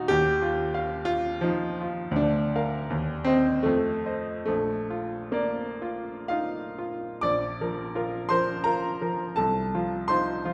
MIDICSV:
0, 0, Header, 1, 2, 480
1, 0, Start_track
1, 0, Key_signature, -2, "major"
1, 0, Tempo, 663717
1, 80, Time_signature, 3, 2, 24, 8
1, 1041, Tempo, 742574
1, 2481, Tempo, 841515
1, 3441, Tempo, 944882
1, 4401, Tempo, 715137
1, 6611, End_track
2, 0, Start_track
2, 0, Title_t, "Grand piano"
2, 0, Program_c, 0, 0
2, 0, Control_c, 0, 64, 127
2, 0, Note_on_c, 0, 39, 63
2, 0, Note_on_c, 0, 63, 98
2, 0, Note_on_c, 0, 65, 49
2, 0, Note_on_c, 0, 66, 51
2, 0, Note_on_c, 0, 75, 66
2, 60, Note_on_c, 0, 67, 107
2, 73, Note_off_c, 0, 39, 0
2, 73, Note_on_c, 0, 39, 68
2, 79, Note_off_c, 0, 66, 0
2, 94, Control_c, 0, 64, 0
2, 97, Note_off_c, 0, 63, 0
2, 98, Note_off_c, 0, 75, 0
2, 99, Note_off_c, 0, 65, 0
2, 222, Control_c, 0, 64, 127
2, 305, Note_on_c, 0, 65, 61
2, 538, Note_on_c, 0, 77, 58
2, 687, Note_off_c, 0, 65, 0
2, 760, Note_on_c, 0, 65, 97
2, 778, Note_off_c, 0, 67, 0
2, 935, Note_off_c, 0, 77, 0
2, 1019, Note_on_c, 0, 53, 82
2, 1027, Note_off_c, 0, 65, 0
2, 1036, Note_on_c, 0, 63, 50
2, 1281, Note_on_c, 0, 65, 50
2, 1283, Note_off_c, 0, 63, 0
2, 1476, Note_on_c, 0, 38, 68
2, 1503, Note_off_c, 0, 39, 0
2, 1507, Note_on_c, 0, 62, 84
2, 1522, Note_off_c, 0, 53, 0
2, 1530, Note_off_c, 0, 65, 0
2, 1547, Control_c, 0, 64, 0
2, 1649, Control_c, 0, 64, 127
2, 1763, Note_on_c, 0, 77, 56
2, 1764, Note_on_c, 0, 70, 53
2, 1954, Note_off_c, 0, 38, 0
2, 1972, Note_off_c, 0, 77, 0
2, 1973, Note_off_c, 0, 70, 0
2, 1987, Note_on_c, 0, 39, 66
2, 2010, Control_c, 0, 64, 0
2, 2121, Control_c, 0, 64, 127
2, 2208, Note_on_c, 0, 60, 95
2, 2221, Note_on_c, 0, 72, 52
2, 2222, Note_off_c, 0, 62, 0
2, 2225, Note_on_c, 0, 75, 57
2, 2449, Note_off_c, 0, 72, 0
2, 2451, Note_off_c, 0, 75, 0
2, 2456, Note_on_c, 0, 57, 77
2, 2461, Note_off_c, 0, 39, 0
2, 2468, Note_off_c, 0, 60, 0
2, 2472, Note_on_c, 0, 41, 60
2, 2493, Control_c, 0, 64, 0
2, 2609, Control_c, 0, 64, 127
2, 2701, Note_on_c, 0, 72, 41
2, 2706, Note_on_c, 0, 75, 46
2, 2920, Note_off_c, 0, 72, 0
2, 2922, Note_off_c, 0, 57, 0
2, 2922, Note_off_c, 0, 75, 0
2, 2929, Note_off_c, 0, 41, 0
2, 2930, Note_on_c, 0, 57, 75
2, 2942, Note_on_c, 0, 34, 53
2, 2958, Control_c, 0, 64, 0
2, 3063, Control_c, 0, 64, 127
2, 3186, Note_on_c, 0, 65, 47
2, 3423, Note_on_c, 0, 58, 70
2, 3432, Note_on_c, 0, 74, 51
2, 3433, Note_off_c, 0, 57, 0
2, 3580, Note_off_c, 0, 65, 0
2, 3678, Note_on_c, 0, 65, 52
2, 3828, Note_off_c, 0, 74, 0
2, 3915, Note_on_c, 0, 77, 69
2, 3916, Note_off_c, 0, 65, 0
2, 3923, Note_on_c, 0, 65, 51
2, 3926, Note_on_c, 0, 63, 45
2, 4162, Note_off_c, 0, 65, 0
2, 4168, Note_off_c, 0, 58, 0
2, 4170, Note_on_c, 0, 65, 46
2, 4175, Note_off_c, 0, 63, 0
2, 4378, Note_off_c, 0, 34, 0
2, 4388, Note_on_c, 0, 86, 89
2, 4394, Note_off_c, 0, 77, 0
2, 4395, Note_on_c, 0, 74, 75
2, 4397, Note_off_c, 0, 65, 0
2, 4398, Note_on_c, 0, 34, 54
2, 4414, Control_c, 0, 64, 0
2, 4546, Control_c, 0, 64, 127
2, 4650, Note_on_c, 0, 53, 48
2, 4651, Note_on_c, 0, 70, 53
2, 4859, Note_off_c, 0, 53, 0
2, 4860, Note_off_c, 0, 70, 0
2, 4879, Note_on_c, 0, 65, 51
2, 4884, Note_on_c, 0, 70, 56
2, 5087, Note_off_c, 0, 74, 0
2, 5093, Note_off_c, 0, 65, 0
2, 5096, Note_off_c, 0, 70, 0
2, 5103, Note_on_c, 0, 84, 83
2, 5109, Note_off_c, 0, 86, 0
2, 5113, Note_on_c, 0, 72, 76
2, 5117, Note_on_c, 0, 53, 49
2, 5119, Note_on_c, 0, 70, 57
2, 5330, Note_off_c, 0, 53, 0
2, 5331, Note_off_c, 0, 70, 0
2, 5335, Note_off_c, 0, 72, 0
2, 5339, Note_on_c, 0, 82, 85
2, 5347, Note_off_c, 0, 84, 0
2, 5349, Note_on_c, 0, 70, 65
2, 5356, Note_on_c, 0, 65, 45
2, 5570, Note_off_c, 0, 65, 0
2, 5583, Note_off_c, 0, 70, 0
2, 5591, Note_on_c, 0, 53, 44
2, 5593, Note_on_c, 0, 70, 47
2, 5812, Note_off_c, 0, 34, 0
2, 5815, Note_off_c, 0, 53, 0
2, 5816, Note_off_c, 0, 70, 0
2, 5822, Note_on_c, 0, 81, 85
2, 5829, Note_on_c, 0, 69, 55
2, 5833, Note_off_c, 0, 82, 0
2, 5837, Note_on_c, 0, 36, 54
2, 5852, Control_c, 0, 64, 0
2, 5977, Control_c, 0, 64, 127
2, 6082, Note_on_c, 0, 53, 45
2, 6083, Note_on_c, 0, 65, 50
2, 6293, Note_off_c, 0, 69, 0
2, 6299, Note_off_c, 0, 53, 0
2, 6300, Note_off_c, 0, 65, 0
2, 6306, Note_on_c, 0, 84, 88
2, 6314, Note_on_c, 0, 72, 64
2, 6317, Note_off_c, 0, 81, 0
2, 6321, Note_on_c, 0, 63, 47
2, 6324, Note_on_c, 0, 65, 52
2, 6534, Note_off_c, 0, 63, 0
2, 6536, Note_off_c, 0, 65, 0
2, 6555, Note_on_c, 0, 53, 46
2, 6557, Note_on_c, 0, 65, 53
2, 6611, Note_off_c, 0, 36, 0
2, 6611, Note_off_c, 0, 53, 0
2, 6611, Note_off_c, 0, 65, 0
2, 6611, Note_off_c, 0, 72, 0
2, 6611, Note_off_c, 0, 84, 0
2, 6611, End_track
0, 0, End_of_file